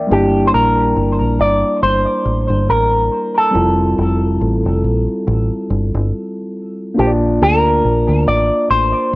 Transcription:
Already playing: tine electric piano A#4 D5 E5 G5
0.07 tine electric piano G3 A#3 D4
0.11 fingered electric bass G1, tine electric piano E4 A5, clean electric guitar G4
0.47 clean electric guitar C5
0.54 fingered electric bass A#1, clean electric guitar A#4
0.96 fingered electric bass G1
1.21 fingered electric bass A#1
1.39 fingered electric bass G1, clean electric guitar D5
1.82 fingered electric bass G1, clean electric guitar C5
2.25 fingered electric bass A1
2.50 fingered electric bass G1
2.69 fingered electric bass A1, clean electric guitar A#4
3.38 clean electric guitar A4
3.51 tine electric piano G3 C4 E4
3.55 fingered electric bass F1, tine electric piano F4 A4
3.98 fingered electric bass F1
4.41 fingered electric bass A1
4.66 fingered electric bass F1
4.84 fingered electric bass A#1
5.28 fingered electric bass A1
5.70 fingered electric bass G1
5.95 fingered electric bass G1
6.94 tine electric piano A#3 D4 F4
6.99 fingered electric bass A#1, clean electric guitar G4, tine electric piano C5 A5
7.07 tine electric piano D5
7.42 fingered electric bass D2, clean electric guitar A#4
7.85 fingered electric bass A#1
8.09 fingered electric bass D2
8.27 fingered electric bass A1, clean electric guitar D5
8.70 fingered electric bass A1, clean electric guitar C5

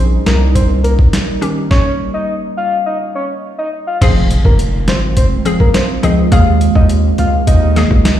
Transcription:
Already playing: 808-style bass A#1, ambient pad G3 A#3 C#4 D#4 A#4
0.26 808-style bass C2, soft synth lead A#4, snare, closed hi-hat
0.55 soft synth lead C5, kick, closed hi-hat
0.84 soft synth lead A#4, closed hi-hat
0.99 kick
1.13 snare, closed hi-hat
1.41 synth pluck D#3 C#4 G4, closed hi-hat
1.71 soft synth lead C#5, kick, snare
2.14 soft synth lead D#5
2.57 soft synth lead F5
2.86 soft synth lead D#5
3.15 soft synth lead C#5
3.58 soft synth lead D#5
3.87 soft synth lead F5
4.01 808-style bass F1, synth pluck F3 C4 G#4, ambient pad G#3 C4 F4, soft synth lead C5, kick, closed hi-hat, crash, impact
4.31 closed hi-hat
4.45 808-style bass F1, soft synth lead A#4, kick
4.59 closed hi-hat
4.88 808-style bass G#1, soft synth lead C5, snare, closed hi-hat
5.17 808-style bass F1, soft synth lead C5, kick, closed hi-hat
5.45 synth pluck F3 C4 G#4, closed hi-hat
5.60 soft synth lead A#4, kick
5.74 soft synth lead C5, snare, closed hi-hat
6.03 808-style bass C#2, synth pluck F3 C4 G#4, soft synth lead D#5, closed hi-hat
6.32 808-style bass D#2, synth pluck D#3 A#3 G#4, ambient pad A#3 D#4, soft synth lead F5, kick, closed hi-hat
6.61 closed hi-hat
6.75 808-style bass D#2, soft synth lead D#5, kick
6.89 closed hi-hat
7.18 808-style bass C#2, soft synth lead F5, closed hi-hat
7.47 808-style bass D#2, soft synth lead D#5, kick, closed hi-hat
7.76 synth pluck D#3 A#3 G#4, snare, closed hi-hat
7.91 808-style bass C#2, kick
8.05 snare, closed hi-hat

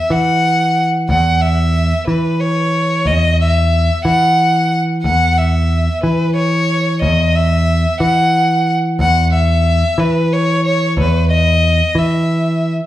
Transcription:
Already playing: violin E5
0.10 picked electric bass E3, violin F#5
1.09 picked electric bass E2, violin F#5
1.41 violin E5
2.07 picked electric bass E3, violin B4
2.41 violin C#5
3.05 picked electric bass E2, violin D#5
3.41 violin E5
4.05 picked electric bass E3, violin F#5
5.03 picked electric bass E2, violin F#5
5.38 violin E5
6.03 picked electric bass E3, violin B4
6.36 violin C#5
7.02 picked electric bass E2, violin D#5
7.36 violin E5
8.00 picked electric bass E3, violin F#5
8.99 picked electric bass E2, violin F#5
9.33 violin E5
9.98 picked electric bass E3, violin B4
10.33 violin C#5
10.66 violin C#5
10.97 picked electric bass E2, violin B4
11.32 violin D#5
11.95 picked electric bass E3, violin E5

